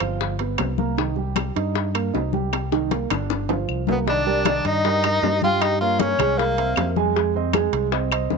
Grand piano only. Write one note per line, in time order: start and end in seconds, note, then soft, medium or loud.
0.00 0.32 F3 medium
0.00 0.33 F4 medium
0.40 0.72 B3 medium
0.40 0.72 B4 medium
0.78 0.94 A#3 medium
0.78 0.95 A#4 medium
0.98 1.14 D#3 medium
0.98 1.14 D#4 medium
1.16 1.49 G3 medium
1.16 1.49 G4 medium
1.56 1.88 D#4 medium
1.56 1.88 D#5 medium
1.94 2.10 A#3 medium
1.94 2.11 A#4 medium
2.13 2.30 D#4 medium
2.13 2.30 D#5 medium
2.33 2.65 G3 medium
2.33 2.65 G4 medium
2.72 2.88 D#3 medium
2.72 2.88 D#4 medium
2.91 3.07 A#3 medium
2.91 3.07 A#4 medium
3.10 3.42 D3 medium
3.10 3.42 D4 medium
3.49 3.81 F3 medium
3.49 3.81 F4 medium
3.88 4.04 A#3 medium
3.88 4.04 A#4 medium
4.06 4.23 D#3 medium
4.06 4.23 D#4 medium
4.06 4.23 D#5 medium
4.26 4.42 G3 medium
4.26 4.43 G4 medium
4.26 4.43 A#4 medium
4.46 4.78 D#3 medium
4.46 4.78 D#4 medium
4.46 4.78 D#5 medium
4.85 5.00 G3 medium
4.85 5.01 G4 medium
4.85 5.01 A#4 medium
5.04 5.36 G3 medium
5.04 5.36 G4 medium
5.04 5.36 A#4 medium
5.43 5.74 G3 medium
5.43 5.75 G4 medium
5.43 5.75 G5 medium
5.81 6.13 A#3 medium
5.81 6.13 A#4 medium
5.81 6.13 C#5 medium
6.20 6.51 G#3 medium
6.20 6.51 G#4 medium
6.20 6.52 G#5 medium
6.58 6.90 C4 medium
6.58 6.90 C5 medium
6.58 6.90 E5 medium
6.97 7.12 G#3 medium
6.97 7.12 G#4 medium
6.97 7.13 G#5 medium
7.15 7.31 G#3 medium
7.15 7.31 G#4 medium
7.15 7.32 G#5 medium
7.36 7.51 C4 medium
7.36 7.51 C5 medium
7.36 7.51 D#5 medium
7.54 7.86 G#3 medium
7.54 7.86 G#4 medium
7.54 7.86 G#5 medium
7.92 8.08 C4 medium
7.92 8.08 C5 medium
7.92 8.08 D#5 medium
8.12 8.38 C4 medium
8.12 8.38 C5 medium
8.12 8.38 D#5 medium